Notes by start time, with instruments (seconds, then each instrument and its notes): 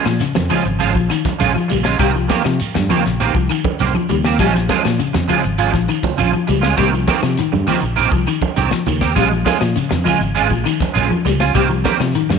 0.05 fingered electric bass A#2, clean electric guitar F3, muted clean electric guitar stroke, snare, claves, shekere
0.20 clean electric guitar C#3, muted fingered electric bass stroke, snare, closed hi-hat, high conga, shekere
0.35 fingered electric bass F2, muted clean electric guitar stroke, snare, high conga, shekere
0.49 clean electric guitar F3 G#3 C#4 F4, closed hi-hat, low conga, claves, shekere
0.64 fingered electric bass G#1, muted clean electric guitar stroke, closed hi-hat, shekere
0.79 clean electric guitar F3 G#3 C#4 F4, closed hi-hat, high conga, shekere
0.94 fingered electric bass A#1, clean electric guitar F3, muted clean electric guitar stroke, kick, shekere
1.09 clean electric guitar D#3, muted clean electric guitar stroke, snare, closed hi-hat, claves, shekere
1.25 muted fingered electric bass stroke, kick, snare, high conga, shekere
1.39 fingered electric bass A#1, clean electric guitar F3 G#3 C#4 F4, closed hi-hat, high conga, shekere
1.54 clean electric guitar F3, muted clean electric guitar stroke, claves, shekere
1.68 fingered electric bass A#1, clean electric guitar G3, muted clean electric guitar stroke, closed hi-hat, low conga, shekere
1.83 clean electric guitar G#3 C#4 F4, snare, shekere
1.98 fingered electric bass C2, clean electric guitar D#3 G3 A#3 C4 G4, kick, closed hi-hat, high conga, claves, shekere
2.13 clean electric guitar F3, muted clean electric guitar stroke, shekere
2.28 clean electric guitar D#3 A#3 C4 G4, kick, snare, closed hi-hat, high conga, shekere
2.44 fingered electric bass C3, clean electric guitar F3, muted clean electric guitar stroke, snare, claves, shekere
2.60 muted fingered electric bass stroke, closed hi-hat, high conga, shekere
2.74 fingered electric bass G2, muted clean electric guitar stroke, snare, high conga, shekere
2.89 clean electric guitar D#3 F3 A#3 C4 G4, closed hi-hat, high conga, low conga, claves, shekere
3.05 fingered electric bass A#1, muted clean electric guitar stroke, snare, closed hi-hat, shekere
3.20 clean electric guitar D#3 A#3 C4 G4, snare, closed hi-hat, high conga, shekere
3.35 fingered electric bass C2, clean electric guitar F3, muted clean electric guitar stroke, kick, shekere
3.49 clean electric guitar D#3, muted clean electric guitar stroke, closed hi-hat, claves, shekere
3.64 muted fingered electric bass stroke, kick, high conga, shekere
3.79 fingered electric bass C2, clean electric guitar A#3 C4 G4, closed hi-hat, high conga, shekere
3.94 clean electric guitar F3, muted clean electric guitar stroke, high conga, claves, shekere
4.09 fingered electric bass D#2, clean electric guitar G3, muted clean electric guitar stroke, closed hi-hat, low conga, shekere
4.25 clean electric guitar A#3 C4 G4, snare, shekere
4.39 fingered electric bass A#1, clean electric guitar F3 G3 G#3 C#4 F4, kick, closed hi-hat, high conga, claves, shekere
4.54 clean electric guitar F3, muted clean electric guitar stroke, snare, shekere
4.69 clean electric guitar F3 G#3 C#4 F4, kick, snare, closed hi-hat, high conga, shekere
4.84 fingered electric bass A#2, clean electric guitar F3, muted clean electric guitar stroke, snare, claves, shekere
4.99 clean electric guitar C#3, muted fingered electric bass stroke, closed hi-hat, high conga, shekere
5.13 fingered electric bass F2, muted clean electric guitar stroke, snare, high conga, shekere
5.28 clean electric guitar F3 G#3 C#4 F4, closed hi-hat, low conga, claves, shekere
5.43 fingered electric bass G#1, muted clean electric guitar stroke, closed hi-hat, shekere
5.58 clean electric guitar F3 G#3 C#4 F4, closed hi-hat, high conga, shekere
5.73 fingered electric bass A#1, clean electric guitar F3, muted clean electric guitar stroke, kick, snare, shekere
5.88 clean electric guitar D#3, muted clean electric guitar stroke, closed hi-hat, claves, shekere
6.03 muted fingered electric bass stroke, kick, high conga, low conga, shekere
6.17 fingered electric bass A#1, clean electric guitar F3 C#4 F4, muted clean electric guitar stroke, closed hi-hat, high conga, shekere
6.32 clean electric guitar F3, muted clean electric guitar stroke, claves, shekere
6.47 fingered electric bass C#2, clean electric guitar G3, muted clean electric guitar stroke, closed hi-hat, low conga, shekere
6.61 clean electric guitar G#3 C#4 F4, snare, shekere
6.77 fingered electric bass C2, clean electric guitar D#3 G3 A#3 C4 G4, kick, closed hi-hat, high conga, claves, shekere
6.92 clean electric guitar F3, muted clean electric guitar stroke, shekere
7.08 clean electric guitar D#3 A#3 C4 G4, kick, snare, closed hi-hat, high conga, shekere
7.22 fingered electric bass C3, clean electric guitar F3, muted clean electric guitar stroke, snare, claves, shekere
7.37 clean electric guitar D#3, muted fingered electric bass stroke, snare, closed hi-hat, high conga, shekere
7.52 fingered electric bass G2, muted clean electric guitar stroke, high conga, shekere
7.67 clean electric guitar D#3 F3 A#3 C4 G4, open hi-hat, low conga, claves, shekere
7.82 fingered electric bass A#1, muted clean electric guitar stroke, closed hi-hat, shekere
7.96 clean electric guitar D#3 A#3 C4 G4, closed hi-hat, high conga, shekere
8.11 fingered electric bass C2, clean electric guitar F3, muted clean electric guitar stroke, kick, shekere
8.27 clean electric guitar D#3, muted clean electric guitar stroke, closed hi-hat, claves, shekere
8.41 muted fingered electric bass stroke, kick, high conga, shekere
8.56 fingered electric bass C2, clean electric guitar D#3 C4 G4, muted clean electric guitar stroke, closed hi-hat, high conga, shekere
8.71 clean electric guitar F3, muted clean electric guitar stroke, snare, claves, shekere
8.86 fingered electric bass D#2, clean electric guitar D#3, muted clean electric guitar stroke, closed hi-hat, low conga, shekere
9.01 clean electric guitar A#3 C4 G4, kick, snare, shekere
9.15 fingered electric bass A#1, clean electric guitar G3 G#3 C#4 F4, kick, closed hi-hat, high conga, claves, shekere
9.30 clean electric guitar F3, muted clean electric guitar stroke, shekere
9.45 clean electric guitar G#3 C#4 F4, kick, snare, closed hi-hat, high conga, shekere
9.60 fingered electric bass A#2, clean electric guitar F3, muted clean electric guitar stroke, snare, claves, shekere
9.76 clean electric guitar C#3, muted fingered electric bass stroke, closed hi-hat, high conga, shekere
9.89 fingered electric bass F2, muted clean electric guitar stroke, snare, high conga, shekere
10.04 clean electric guitar F3 G#3 C#4 F4, closed hi-hat, low conga, claves, shekere
10.20 fingered electric bass G#1, muted clean electric guitar stroke, closed hi-hat, shekere
10.35 clean electric guitar G#3 C#4 F4, closed hi-hat, high conga, shekere
10.49 fingered electric bass A#1, clean electric guitar F3, muted clean electric guitar stroke, kick, shekere
10.64 clean electric guitar D#3, muted clean electric guitar stroke, snare, closed hi-hat, claves, shekere
10.81 muted fingered electric bass stroke, kick, snare, high conga, shekere
10.94 fingered electric bass A#1, clean electric guitar G#3 C#4 F4, closed hi-hat, high conga, shekere
11.10 clean electric guitar F3, muted clean electric guitar stroke, high conga, claves, shekere
11.25 fingered electric bass C#2, clean electric guitar G3, muted clean electric guitar stroke, snare, closed hi-hat, low conga, shekere
11.40 clean electric guitar C#4 F4, snare, shekere
11.54 fingered electric bass C2, clean electric guitar D#3 G3 A#3 C4 G4, kick, closed hi-hat, high conga, claves, shekere
11.70 clean electric guitar F3, muted clean electric guitar stroke, shekere
11.84 clean electric guitar D#3 A#3 C4 G4, kick, snare, closed hi-hat, high conga, shekere
11.99 fingered electric bass C3, clean electric guitar F3, muted clean electric guitar stroke, snare, claves, shekere
12.14 clean electric guitar D#3, muted fingered electric bass stroke, closed hi-hat, high conga, shekere
12.29 fingered electric bass G2, muted clean electric guitar stroke, snare, high conga, shekere